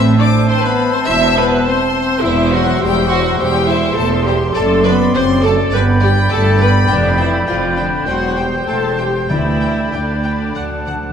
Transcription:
Already playing: double bass section A1, cello section A2, french horn section C4, clarinet C5, violin section E5, oboe E5, flute section A5
0.18 french horn section D4, viola section D5, violin section D6
0.47 french horn section C4, viola section C5, violin section C6
0.61 french horn section B3, viola section B4, violin section B5
0.91 french horn section C4, viola section C5, violin section C6
1.07 double bass section E1, cello section E2, french horn section E4, viola section E5, violin section E5 E6
1.36 french horn section B3, viola section B4, violin section B5
1.65 french horn section C4, viola section C5, violin section C6
2.23 double bass section E1, cello section E2, french horn section E3, viola section E4, violin section C5 E5, oboe E5, flute section C6
2.52 french horn section F#3, viola section F#4, violin section C5 F#5
2.81 double bass section E1, cello section E2, french horn section G3, viola section G4, violin section C5 G5
3.10 french horn section F#3, viola section F#4, violin section C5 F#5
3.39 double bass section E1, cello section E2, french horn section G3, viola section G4, violin section C5 G5
3.68 french horn section E3, viola section E4, violin section C5 E5
3.97 double bass section E1, cello section E2, french horn section A3, viola section A4, violin section C5 A5
4.25 french horn section G3, viola section G4, violin section C5 G5
4.54 double bass section F#1, cello section F#2, french horn section A3, viola section A4, violin section D5 A5, oboe D5, clarinet D5
4.84 french horn section B3, viola section B4, violin section D5 B5
5.14 double bass section F#1, cello section F#2, french horn section C4, viola section C5, violin section D5 C6
5.43 french horn section A3, viola section A4, violin section D5 A5
5.71 double bass section G1, cello section G2, french horn section B3, viola section B4, violin section D5, oboe G5, flute section B5
5.76 violin section B5
6.00 french horn section G3, viola section G4, violin section D5 G5
6.29 double bass section G1, cello section G2, viola section A4, violin section D5 A5
6.34 french horn section A3
6.58 french horn section B3, viola section B4, violin section D5 B5
6.88 double bass section F1, cello section F2, viola section D4, violin section G5
6.92 french horn section D3, violin section D5
7.18 french horn section E3, viola section E4, violin section E5 G5
7.47 double bass section F1, cello section F2, french horn section F3, viola section F4, violin section F5 G5
7.77 french horn section D3, viola section D4, violin section D5 G5
8.07 double bass section E1, cello section E2, french horn section F#3, viola section F#4, clarinet C5, violin section F#5 G5, flute section C6
8.37 french horn section G3, viola section G4, violin section G5
8.67 double bass section E1, cello section E2, french horn section A3, viola section A4, violin section G5 A5
8.98 french horn section G3, viola section G4, violin section G5
9.29 cello section D2, double bass section D2, timpani D3, french horn section E3, viola section E4, clarinet D5, violin section E5 G5, flute section B5
9.61 violin section G5
9.92 cello section D2, double bass section D2, french horn section D3, viola section D4, violin section D5 G5
10.24 violin section G5
10.55 double bass section D2, cello section D2, timpani D3, violin section F#5, oboe F#5, flute section A5
10.63 timpani D3
10.71 timpani D3
10.80 timpani D3
10.86 timpani D3, violin section F#5
10.95 timpani D3
11.03 timpani D3

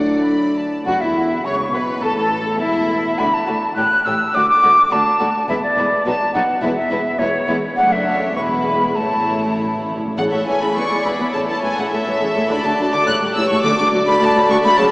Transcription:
Already playing: double bass section D2, cello section F#3, viola section A3, french horn section D4, violin section D5 F#5
0.24 violin section B5
0.55 violin section A5
0.85 double bass section F#1, cello section F#2, violin section F#4, viola section F#4, flute F#5
1.00 double bass section E1, cello section E2, violin section E4, viola section E4, flute E5
1.44 double bass section C#2, cello section C#3, violin section C#5, viola section C#5, flute C#6
1.73 double bass section B1, cello section B2, violin section B4, viola section B4, flute B5
2.02 double bass section A1, cello section A2, timpani A2, violin section A4, viola section A4, flute A5
2.16 double bass section A1, cello section A2, violin section A4, viola section A4, flute A5
2.60 double bass section E1, cello section E2, violin section E4, viola section E4, flute E5
3.18 double bass section D2, cello section D3, viola section A3, violin section F#4 D5, flute B5
3.33 flute A5
3.47 double bass section D2, cello section D3, viola section A3, violin section F#4 D5
3.76 double bass section A1, cello section A2, viola section A3, violin section G4 C#5, flute F#6
4.05 double bass section A1, cello section A2, viola section A3, violin section G4 C#5, flute E6
4.33 double bass section D2, cello section D2, viola section A3, violin section F#4 D5, flute D6
4.49 flute D6
4.62 double bass section D2, cello section D2, viola section A3, violin section F#4 D5
4.91 double bass section D2, cello section D2, viola section A3, violin section F#4 D5, flute A5
5.20 double bass section D2, cello section D2, viola section A3, violin section F#4 D5
5.49 double bass section E1, cello section E2, viola section G#3, violin section E4 B4, flute E5
5.63 flute D5
5.77 double bass section E1, cello section E2, viola section G#3, violin section E4 B4
6.05 double bass section B1, cello section B2, viola section F#3, violin section D#4 B4, flute A5
6.34 double bass section B1, cello section B2, viola section F#3, violin section D#4 B4, flute F#5
6.62 double bass section E1, cello section E2, viola section G#3, violin section E4 B4, flute E5
6.76 flute E5
6.91 double bass section E1, cello section E2, viola section G#3, violin section E4 B4
7.18 double bass section E1, cello section E2, viola section G#3, violin section E4 B4, flute C#5
7.48 double bass section E1, cello section E2, viola section G#3, violin section E4 B4
7.77 double bass section F#1, cello section F#2, viola section A3, violin section D4 D5, flute F#5
7.92 flute E5
8.06 violin section C#5
8.35 double bass section E1, cello section E2, viola section G#3, violin section E4 B4, flute C#6
8.50 flute B5
8.95 double bass section A1, cello section A2, viola section A3, violin section E4 C#5, flute A5
9.04 timpani A2
9.13 timpani A2
9.28 timpani A2
9.36 timpani A2
9.44 timpani A2
9.51 timpani A2
9.59 timpani A2
9.66 timpani A2
9.74 timpani A2
9.82 timpani A2
9.90 timpani A2
9.97 timpani A2
10.05 timpani A2
10.17 double bass section A1, timpani A2, cello section A2, viola section C#3 E4, violin section A4 C#5 F#5
10.32 cello section A2, viola section A3, violin section E5
10.46 double bass section A1, cello section A2, viola section E3, violin section G#5
10.61 cello section A2, viola section C#3, violin section B5
10.76 double bass section E1, cello section E2, viola section B3, violin section G#4 D5 C#6
10.91 cello section E2, viola section G#3
11.04 double bass section E1, cello section E2, viola section E3, violin section B5
11.20 cello section E2, viola section B3
11.33 double bass section A1, cello section A2, viola section C#3, violin section A4 C#5 A5
11.49 cello section A2, viola section A3, violin section A5
11.63 double bass section A1, cello section A2, viola section E3, violin section G#5
11.77 cello section A2, viola section C#3, violin section F#5
11.91 double bass section A1, cello section A2, viola section A3, violin section E5
12.07 cello section A2, viola section E3
12.21 double bass section A1, cello section A2, viola section C#3
12.35 cello section A2, viola section A3
12.49 double bass section D2, viola section D3 F#4, cello section D3, violin section D5 B5
12.63 cello section D3, viola section A3, violin section A5
12.78 double bass section D2, cello section D3, viola section F#3
12.92 viola section D3, cello section D3, violin section D6
13.07 double bass section A1, cello section A2, viola section A3 G4, violin section C#5 F#6
13.22 cello section A2, viola section G3
13.35 double bass section A1, cello section A2, viola section E3, violin section E6
13.49 cello section A2, viola section A3, violin section C#6
13.62 double bass section D2, cello section D2, timpani D3, viola section D3 F#4, violin section A4 D5 D6
13.78 cello section D2, viola section A3, violin section D6
13.93 cello section D2, double bass section D2, viola section F#3
14.06 cello section D2, viola section D3, violin section B5
14.21 cello section D2, double bass section D2, viola section A3, violin section A5
14.36 cello section D2, viola section F#3, violin section B5
14.49 double bass section D2, cello section D2, viola section D3, violin section C#6
14.64 cello section D2, viola section A3, violin section B5
14.77 double bass section F#1, cello section F#2, viola section C#3, violin section C#5 A5

